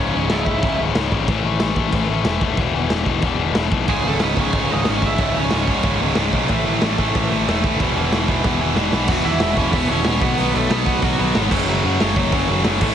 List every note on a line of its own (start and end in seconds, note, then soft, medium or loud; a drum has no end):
0.00 0.12 C#1 medium
0.00 0.15 C#2 medium
0.00 0.14 G#2 loud
0.00 0.14 C#3 medium
0.00 0.11 C#4 medium
0.00 0.12 C#5 loud
0.12 0.28 C#1 medium
0.12 0.30 C#2 medium
0.12 0.30 G#2 medium
0.12 0.31 C#3 medium
0.12 0.28 C#4 medium
0.12 0.31 C#5 loud
0.30 0.45 C#1 medium
0.30 0.46 C#2 medium
0.30 0.46 G#2 medium
0.30 0.45 C#3 medium
0.30 0.76 E4 medium
0.30 0.80 E5 medium
0.30 snare loud
0.30 crash medium
0.46 0.60 C#1 loud
0.46 0.62 C#2 medium
0.46 0.63 G#2 medium
0.46 0.64 C#3 medium
0.46 kick medium
0.63 0.91 C#1 loud
0.63 0.80 C#2 loud
0.63 0.80 G#2 loud
0.63 0.79 C#3 loud
0.63 kick loud
0.63 crash medium
0.80 0.96 C#2 medium
0.80 0.97 G#2 medium
0.80 0.97 C#3 medium
0.95 1.10 C#1 medium
0.95 1.13 C#2 medium
0.95 1.12 G#2 medium
0.95 1.11 C#3 medium
0.95 snare loud
0.95 crash medium
1.12 1.26 G#1 medium
1.12 1.28 C#2 medium
1.12 1.28 G#2 medium
1.12 1.28 C#3 loud
1.12 kick medium
1.28 1.42 A1 medium
1.28 1.46 A2 medium
1.28 1.46 E3 loud
1.28 1.44 A3 loud
1.28 kick loud
1.28 crash medium
1.45 1.59 A1 medium
1.45 1.61 A2 medium
1.45 1.62 E3 medium
1.45 1.62 A3 medium
1.60 1.75 A1 medium
1.60 1.78 A2 medium
1.60 1.78 E3 medium
1.60 1.76 A3 medium
1.60 snare loud
1.60 crash medium
1.76 1.91 A1 loud
1.76 1.92 A2 medium
1.76 1.94 E3 medium
1.76 1.94 A3 loud
1.76 kick medium
1.92 2.07 A1 loud
1.92 2.10 A2 loud
1.92 2.10 E3 loud
1.92 2.08 A3 loud
1.92 kick loud
1.92 crash medium
2.09 2.24 A1 medium
2.09 2.24 A2 medium
2.09 2.26 E3 medium
2.09 2.26 A3 loud
2.25 2.40 E1 loud
2.25 2.42 A2 medium
2.25 2.43 E3 medium
2.25 2.42 A3 medium
2.25 snare loud
2.25 crash medium
2.41 2.56 D#1 medium
2.41 2.58 A2 medium
2.41 2.60 E3 medium
2.41 2.58 A3 loud
2.41 kick loud
2.57 2.72 E1 loud
2.57 2.75 E2 loud
2.57 2.75 B2 loud
2.57 2.75 E3 loud
2.57 kick loud
2.57 crash medium
2.75 2.89 E1 medium
2.75 2.90 E2 medium
2.75 2.91 B2 medium
2.75 2.93 E3 medium
2.90 3.05 E1 loud
2.90 3.07 E2 medium
2.90 3.07 B2 medium
2.90 3.07 E3 medium
2.90 snare loud
2.90 crash medium
3.06 3.21 E1 medium
3.06 3.22 E2 medium
3.06 3.23 B2 medium
3.06 3.24 E3 loud
3.06 kick medium
3.22 3.51 E1 medium
3.22 3.39 E2 loud
3.22 3.38 B2 loud
3.22 3.38 E3 loud
3.22 kick loud
3.22 crash medium
3.39 3.53 E2 medium
3.39 3.54 B2 medium
3.39 3.55 E3 loud
3.54 3.70 E1 loud
3.54 3.71 E2 medium
3.54 3.70 B2 medium
3.54 3.70 E3 medium
3.54 snare loud
3.54 crash medium
3.71 3.86 B1 medium
3.71 3.86 E2 medium
3.71 3.86 B2 loud
3.71 3.87 E3 loud
3.71 kick loud
3.86 4.03 C#1 medium
3.86 4.04 C#2 loud
3.86 4.03 G#2 medium
3.86 4.03 C#3 loud
3.86 4.04 G#3 medium
3.86 4.06 G#4 medium
3.86 kick loud
3.86 crash medium
4.03 4.20 C#1 medium
4.03 4.20 C#2 medium
4.03 4.20 G#2 medium
4.03 4.22 C#3 medium
4.03 4.22 A3 medium
4.08 4.23 A4 medium
4.20 4.36 C#1 medium
4.20 4.38 C#2 medium
4.20 4.38 G#2 medium
4.20 4.37 C#3 medium
4.20 4.38 B3 medium
4.20 snare loud
4.20 crash medium
4.24 4.39 B4 medium
4.36 4.51 C#1 loud
4.36 4.52 C#2 medium
4.36 4.53 G#2 medium
4.36 4.54 C#3 medium
4.36 4.69 C#4 medium
4.36 kick medium
4.41 4.73 C#5 loud
4.53 4.68 C#1 loud
4.53 4.72 C#2 loud
4.53 4.72 G#2 loud
4.53 4.70 C#3 loud
4.53 kick loud
4.53 crash medium
4.71 4.85 C#1 loud
4.71 4.86 C#2 medium
4.71 4.87 G#2 medium
4.71 4.88 C#3 loud
4.71 4.86 D#4 medium
4.71 4.89 D#5 medium
4.85 5.01 G#1 medium
4.85 5.04 C#2 medium
4.85 5.03 G#2 medium
4.85 5.02 C#3 medium
4.85 5.03 C#4 medium
4.85 snare loud
4.85 crash medium
4.91 5.06 C#5 loud
5.02 5.17 G#1 medium
5.02 5.18 C#2 medium
5.02 5.19 G#2 medium
5.02 5.19 C#3 loud
5.02 5.19 E4 medium
5.02 kick loud
5.06 5.19 E5 loud
5.18 5.33 C#1 loud
5.18 5.35 C#2 medium
5.18 5.35 G#2 loud
5.18 5.34 C#3 loud
5.18 5.35 E4 medium
5.18 5.38 E5 loud
5.18 kick loud
5.18 crash medium
5.34 5.49 C#1 medium
5.34 5.51 C#2 medium
5.34 5.52 G#2 medium
5.34 5.52 C#3 medium
5.34 5.51 C#4 medium
5.38 5.53 C#5 loud
5.50 5.65 C#1 medium
5.50 5.68 C#2 medium
5.50 5.67 G#2 medium
5.50 5.67 C#3 loud
5.50 5.98 C#4 medium
5.50 5.98 C#5 medium
5.50 snare loud
5.50 crash medium
5.67 5.82 C#1 loud
5.67 5.83 C#2 medium
5.67 5.83 G#2 medium
5.67 5.84 C#3 medium
5.67 kick medium
5.83 6.12 C#1 medium
5.83 6.01 C#2 loud
5.83 6.00 G#2 loud
5.83 6.00 C#3 loud
5.83 kick loud
5.83 crash medium
6.01 6.16 C#2 medium
6.01 6.17 G#2 medium
6.01 6.17 C#3 loud
6.15 6.31 C#1 medium
6.15 6.33 C#2 medium
6.15 6.33 G#2 medium
6.15 6.32 C#3 medium
6.15 snare loud
6.15 crash medium
6.33 6.47 B1 medium
6.33 6.49 C#2 medium
6.33 6.49 G#2 loud
6.33 6.49 C#3 medium
6.33 kick medium
6.48 6.64 A1 medium
6.48 6.65 A2 loud
6.48 6.66 E3 loud
6.48 6.64 A3 loud
6.48 kick loud
6.48 crash medium
6.65 6.80 A1 medium
6.65 6.81 A2 medium
6.65 6.83 E3 medium
6.65 6.82 A3 medium
6.82 6.96 A1 medium
6.82 6.99 A2 medium
6.82 6.98 E3 medium
6.82 6.97 A3 loud
6.82 snare loud
6.82 crash medium
6.98 7.13 A1 loud
6.98 7.13 A2 medium
6.98 7.14 E3 medium
6.98 7.15 A3 loud
6.98 kick medium
7.14 7.29 A1 loud
7.14 7.31 A2 loud
7.14 7.32 E3 loud
7.14 7.30 A3 loud
7.14 kick loud
7.14 crash medium
7.31 7.45 A1 medium
7.31 7.46 A2 medium
7.31 7.48 E3 medium
7.31 7.47 A3 loud
7.47 7.62 E1 medium
7.47 7.65 A2 medium
7.47 7.65 E3 medium
7.47 7.64 A3 medium
7.47 snare loud
7.47 crash medium
7.64 7.78 D#1 medium
7.64 7.80 A2 medium
7.64 7.81 E3 medium
7.64 7.80 A3 loud
7.64 kick loud
7.80 7.94 E1 medium
7.80 7.98 E2 loud
7.80 7.97 B2 loud
7.80 7.96 E3 loud
7.80 kick loud
7.80 crash medium
7.96 8.10 E1 medium
7.96 8.12 E2 medium
7.96 8.12 B2 medium
7.96 8.14 E3 medium
8.12 8.26 E1 medium
8.12 8.29 E2 medium
8.12 8.28 B2 medium
8.12 8.28 E3 loud
8.12 snare loud
8.12 crash medium
8.28 8.42 E1 medium
8.28 8.44 E2 medium
8.28 8.45 B2 medium
8.28 8.45 E3 loud
8.28 kick medium
8.44 8.73 E1 medium
8.44 8.61 E2 loud
8.44 8.60 B2 loud
8.44 8.59 E3 loud
8.44 kick loud
8.44 snare medium
8.60 8.75 E2 medium
8.60 8.76 B2 loud
8.60 8.77 E3 loud
8.76 8.90 E1 loud
8.76 8.94 E2 medium
8.76 8.93 B2 medium
8.76 8.92 E3 medium
8.76 snare loud
8.92 9.07 B1 medium
8.92 9.08 E2 medium
8.92 9.09 B2 medium
8.92 9.09 E3 loud
8.92 snare loud
9.08 9.22 E1 loud
9.08 9.26 E2 medium
9.08 9.25 B2 medium
9.08 9.25 E3 loud
9.08 9.24 F#4 medium
9.08 9.24 F#5 loud
9.08 kick loud
9.08 crash loud
9.24 9.39 E2 medium
9.24 9.41 E2 medium
9.24 9.41 B2 medium
9.24 9.42 E3 medium
9.24 9.55 E4 medium
9.24 9.57 E5 loud
9.40 9.55 E1 medium
9.40 9.57 E2 loud
9.40 9.56 B2 loud
9.40 9.56 E3 loud
9.40 snare loud
9.40 open hi-hat medium
9.57 9.71 E1 loud
9.57 9.72 E2 medium
9.57 9.73 B2 medium
9.57 9.74 E3 loud
9.57 9.74 C#4 medium
9.57 9.72 C#5 loud
9.57 kick medium
9.73 9.86 E1 loud
9.73 9.91 E2 loud
9.73 9.91 B2 loud
9.73 9.90 E3 loud
9.73 9.89 B3 medium
9.73 9.88 B4 loud
9.73 kick loud
9.73 open hi-hat medium
9.88 10.03 E1 loud
9.88 10.07 B2 loud
9.88 10.08 E3 loud
9.88 10.20 C#4 medium
9.88 10.21 C#5 loud
9.93 10.05 E2 medium
10.05 10.19 E1 loud
10.05 10.22 E2 medium
10.05 10.22 B2 loud
10.05 snare loud
10.05 open hi-hat medium
10.09 10.23 E3 loud
10.21 10.35 B1 medium
10.21 10.39 B2 loud
10.21 10.40 F#3 loud
10.21 10.53 B3 medium
10.21 10.38 B3 loud
10.21 10.56 B4 loud
10.21 kick loud
10.38 10.52 B1 loud
10.38 10.53 B2 medium
10.38 10.54 F#3 loud
10.38 10.54 B3 loud
10.38 open hi-hat medium
10.54 10.68 B1 medium
10.54 10.70 B2 loud
10.54 10.71 F#3 medium
10.54 10.70 A3 medium
10.54 10.70 B3 medium
10.54 10.70 A4 medium
10.70 10.84 B1 loud
10.70 10.85 B2 loud
10.70 10.86 F#3 loud
10.70 10.86 B3 loud
10.70 11.02 B3 medium
10.70 11.02 B4 medium
10.70 snare loud
10.70 open hi-hat medium
10.86 11.00 B1 loud
10.86 11.03 B2 medium
10.86 11.02 F#3 medium
10.86 11.01 B3 medium
10.86 kick medium
11.02 11.16 B1 loud
11.02 11.17 B2 loud
11.02 11.18 F#3 loud
11.02 11.19 B3 loud
11.02 11.35 F#4 medium
11.02 11.35 F#5 loud
11.02 kick loud
11.02 open hi-hat medium
11.18 11.33 B1 loud
11.18 11.36 B2 loud
11.18 11.35 F#3 medium
11.18 11.35 B3 loud
11.35 11.49 G#1 loud
11.35 11.51 B2 medium
11.35 11.52 F#3 loud
11.35 11.52 B3 loud
11.35 snare loud
11.35 open hi-hat medium
11.51 11.64 F#1 medium
11.51 11.70 F#2 loud
11.51 11.68 C#3 loud
11.51 11.68 F#3 loud
11.51 kick loud
11.51 crash loud
11.68 11.81 F#1 loud
11.68 11.83 F#2 medium
11.68 11.84 C#3 loud
11.68 11.85 F#3 loud
11.84 11.98 F#2 loud
11.84 12.01 F#2 medium
11.84 12.00 C#3 loud
11.84 12.00 F#3 loud
12.00 12.14 F#1 medium
12.00 12.15 F#2 medium
12.00 12.16 C#3 loud
12.00 12.17 F#3 loud
12.00 snare loud
12.00 open hi-hat medium
12.16 12.30 F#1 loud
12.16 12.33 F#2 medium
12.16 12.33 C#3 medium
12.16 12.32 F#3 medium
12.16 kick loud
12.32 12.46 F#1 medium
12.32 12.49 F#2 loud
12.32 12.50 C#3 loud
12.32 12.50 F#3 loud
12.32 kick loud
12.32 open hi-hat medium
12.48 12.62 F#1 loud
12.48 12.66 F#2 medium
12.48 12.65 C#3 loud
12.48 12.64 F#3 loud
12.64 12.78 F#1 loud
12.64 12.81 F#2 medium
12.64 12.81 C#3 loud
12.64 12.81 F#3 loud
12.64 snare loud
12.64 open hi-hat medium
12.81 12.95 A1 medium
12.81 12.95 A2 loud
12.81 12.95 E3 loud
12.81 12.95 A3 loud
12.81 kick loud
12.81 crash loud